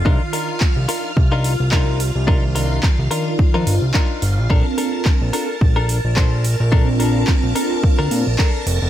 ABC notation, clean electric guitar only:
X:1
M:4/4
L:1/16
Q:"Swing 16ths" 1/4=108
K:Bb
V:1 name="Clean electric guitar"
[DEFB] z [DEFB]2 z2 [DEFB]2 z [DEFB] z2 [DEFB]2 z2 | [DEFB] z [DEFB]2 z2 [DEFB]2 z [DEFB] z2 [DEFB]2 z2 | [DAB] z [DAB]2 z2 [DAB]2 z [DAB] z2 [DAc]2 z2 | [DAB] z [DAB]2 z2 [DAB]2 z [DAB] z2 [DAB]2 z2 |]